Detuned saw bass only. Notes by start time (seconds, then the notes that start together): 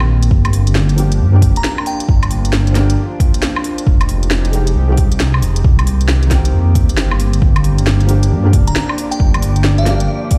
Already playing: A#1
0.31 G1
1.20 G2
1.42 D1
2.09 G1
3.87 F1
4.76 C2
5.42 F1
5.65 C2
6.54 F2
6.75 D2
6.89 G1
7.42 G1
8.31 G2
8.53 D1
9.20 G1